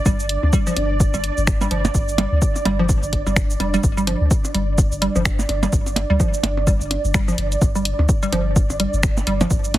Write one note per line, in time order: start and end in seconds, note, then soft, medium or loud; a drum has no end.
0.00 9.78 D5 medium
0.06 0.37 G1 loud
0.06 0.09 G3 medium
0.06 kick loud
0.06 percussion blips soft
0.06 shaker medium
0.20 shaker soft
0.29 closed hi-hat medium
0.43 0.50 D2 medium
0.43 percussion blips soft
0.53 0.59 G3 loud
0.53 kick loud
0.53 shaker medium
0.67 0.73 F3 medium
0.67 shaker soft
0.76 1.08 G1 medium
0.76 closed hi-hat medium
0.76 percussion blips soft
1.00 kick loud
1.00 shaker medium
1.14 1.30 G1 medium
1.14 1.16 G3 medium
1.14 percussion blips soft
1.14 shaker soft
1.24 closed hi-hat medium
1.38 1.67 G1 medium
1.38 shaker soft
1.47 finger snap loud
1.47 kick loud
1.47 percussion blips soft
1.47 shaker medium
1.61 1.65 G3 loud
1.61 percussion blips medium
1.61 shaker soft
1.71 1.89 G1 loud
1.71 1.80 F3 medium
1.71 closed hi-hat medium
1.85 closed hi-hat soft
1.85 percussion blips soft
1.85 percussion blips medium
1.85 shaker soft
1.94 2.26 G1 loud
1.94 kick loud
1.94 shaker medium
2.08 shaker soft
2.18 2.22 G3 medium
2.18 closed hi-hat medium
2.18 percussion blips soft
2.18 percussion blips loud
2.32 2.39 D2 medium
2.42 kick loud
2.42 shaker medium
2.56 percussion blips soft
2.56 shaker soft
2.65 2.97 G1 medium
2.65 2.71 G3 loud
2.65 closed hi-hat medium
2.65 percussion blips loud
2.79 2.85 F3 medium
2.89 kick loud
2.89 percussion blips soft
2.89 shaker medium
3.03 3.19 G1 medium
3.03 shaker soft
3.13 kick medium
3.13 closed hi-hat medium
3.26 3.56 G1 medium
3.26 3.31 G3 medium
3.26 percussion blips soft
3.26 shaker soft
3.36 finger snap loud
3.36 kick loud
3.36 shaker medium
3.50 shaker soft
3.60 3.78 F1 loud
3.60 3.63 G3 medium
3.60 closed hi-hat medium
3.60 percussion blips soft
3.74 3.78 G3 loud
3.74 closed hi-hat soft
3.74 shaker soft
3.84 4.15 G1 medium
3.84 kick loud
3.84 shaker medium
3.97 4.01 G3 loud
3.97 shaker soft
4.07 4.16 F3 medium
4.07 closed hi-hat medium
4.07 percussion blips soft
4.21 4.28 D2 medium
4.31 kick loud
4.31 shaker medium
4.45 percussion blips soft
4.45 shaker soft
4.54 4.86 G1 medium
4.54 4.58 G3 medium
4.54 closed hi-hat medium
4.78 kick loud
4.78 percussion blips soft
4.78 shaker medium
4.92 5.08 G1 medium
4.92 shaker soft
5.02 5.07 G3 loud
5.02 closed hi-hat medium
5.15 5.45 G1 medium
5.15 5.22 F3 medium
5.15 percussion blips soft
5.15 shaker soft
5.25 finger snap loud
5.25 kick loud
5.25 shaker medium
5.39 percussion blips medium
5.39 shaker soft
5.49 5.67 G1 loud
5.49 closed hi-hat medium
5.49 percussion blips soft
5.63 5.65 G3 medium
5.63 closed hi-hat soft
5.63 percussion blips medium
5.63 shaker soft
5.73 6.04 G1 loud
5.73 kick loud
5.73 shaker medium
5.86 percussion blips soft
5.86 shaker soft
5.96 closed hi-hat medium
5.96 percussion blips loud
6.10 6.17 D2 medium
6.10 6.14 G3 medium
6.20 6.28 F3 medium
6.20 kick loud
6.20 percussion blips soft
6.20 shaker medium
6.34 shaker soft
6.43 6.75 G1 medium
6.43 closed hi-hat medium
6.43 percussion blips medium
6.57 percussion blips soft
6.67 6.71 G3 medium
6.67 kick loud
6.67 shaker medium
6.81 6.97 G1 medium
6.81 shaker soft
6.91 closed hi-hat medium
6.91 percussion blips soft
7.04 7.34 G1 medium
7.04 shaker soft
7.14 7.20 G3 loud
7.14 finger snap loud
7.14 kick loud
7.14 shaker medium
7.28 7.34 F3 medium
7.28 percussion blips soft
7.28 shaker soft
7.38 7.56 G1 loud
7.38 closed hi-hat medium
7.52 closed hi-hat soft
7.52 shaker soft
7.61 7.93 G1 medium
7.61 kick loud
7.61 percussion blips soft
7.61 shaker medium
7.75 7.78 G3 medium
7.75 shaker soft
7.85 closed hi-hat loud
7.99 8.06 D2 loud
7.99 percussion blips soft
8.09 kick loud
8.09 shaker medium
8.23 8.27 G3 loud
8.23 shaker soft
8.32 8.64 G1 medium
8.32 8.41 F3 medium
8.32 closed hi-hat medium
8.32 percussion blips soft
8.56 kick loud
8.56 shaker medium
8.70 8.86 G1 loud
8.70 percussion blips soft
8.70 shaker soft
8.80 8.83 G3 medium
8.80 closed hi-hat medium
8.93 9.23 G1 loud
8.93 shaker soft
9.03 finger snap loud
9.03 kick loud
9.03 percussion blips soft
9.03 shaker medium
9.17 percussion blips medium
9.17 shaker soft
9.27 9.45 G1 loud
9.27 9.33 G3 loud
9.27 closed hi-hat medium
9.41 9.47 F3 medium
9.41 closed hi-hat soft
9.41 percussion blips soft
9.41 percussion blips medium
9.41 shaker soft
9.50 9.78 G1 loud
9.50 kick loud
9.50 shaker medium
9.64 shaker soft
9.74 closed hi-hat medium
9.74 percussion blips soft
9.74 percussion blips medium